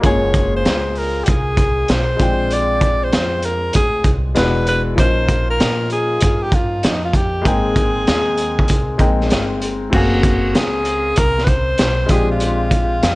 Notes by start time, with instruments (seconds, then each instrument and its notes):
0.00 upright bass F#1, upright piano G#3 A#3 C#4, kick, closed hi-hat
0.05 upright piano F4 G#4, alto saxophone C#5
0.34 kick, closed hi-hat
0.56 alto saxophone C5
0.65 upright bass C#2, snare, closed hi-hat
0.95 alto saxophone A#4, open hi-hat
1.24 alto saxophone G4, closed hi-hat
1.28 upright bass C2, alto saxophone G#4, kick
1.57 kick, closed hi-hat
1.88 upright bass B1, alto saxophone C5, snare, closed hi-hat
2.17 upright bass A#1, upright piano G#3 C4 D4, kick, closed hi-hat
2.21 upright piano F4 G5
2.51 alto saxophone D5, closed hi-hat
2.81 kick, closed hi-hat
3.03 alto saxophone C5
3.13 upright bass F2, snare, closed hi-hat
3.42 alto saxophone A#4, closed hi-hat
3.73 upright bass D2, alto saxophone G#4, kick, closed hi-hat
4.04 upright bass C2, kick, closed hi-hat
4.35 upright bass E1, upright piano G#3 B3 D4 E4 F#4, alto saxophone B4, snare, closed hi-hat
4.67 alto saxophone B4, closed hi-hat
4.95 upright bass A#1, upright piano F3 A#3 C#4, kick, closed hi-hat
4.99 upright piano D#4 F4, alto saxophone C5
5.29 kick, closed hi-hat
5.50 alto saxophone A#4
5.60 upright bass A#2, snare, closed hi-hat
5.90 alto saxophone G#4, closed hi-hat
6.21 upright bass G2, kick, closed hi-hat
6.43 alto saxophone G4
6.52 alto saxophone F4, kick, closed hi-hat
6.83 upright bass F2, alto saxophone D#4, snare, closed hi-hat
7.05 alto saxophone F4
7.13 alto saxophone G4, kick, closed hi-hat
7.42 upright bass G#1, upright piano G#3 A#3 C4, kick, closed hi-hat
7.46 upright piano D#4 G5, alto saxophone G#4
7.76 kick, closed hi-hat
8.07 upright bass D#2, snare, closed hi-hat
8.38 closed hi-hat
8.59 kick
8.68 upright bass C2, kick, closed hi-hat
8.98 upright bass A#1, upright piano G#3 A#3 C4 D#4 G5, kick, closed hi-hat
9.21 snare
9.30 upright bass G1, snare, closed hi-hat
9.62 closed hi-hat
9.90 upright bass F#1, upright piano A3 C4 C#4, kick, crash
9.94 upright piano A#3 G#4 F5, alto saxophone F#4
10.23 kick, closed hi-hat
10.55 upright bass C#2, alto saxophone G#4, snare, closed hi-hat
10.85 closed hi-hat
11.16 upright bass C2, alto saxophone A#4, kick, closed hi-hat
11.38 snare
11.44 alto saxophone B4, kick, closed hi-hat
11.49 alto saxophone C5
11.78 upright bass B1, snare, closed hi-hat
12.06 upright bass A#1, upright piano G#3 C4 D4, kick, closed hi-hat
12.10 upright piano F4 G4, alto saxophone G#4
12.31 alto saxophone F4
12.40 closed hi-hat
12.71 kick, closed hi-hat
13.03 upright bass F2, snare, closed hi-hat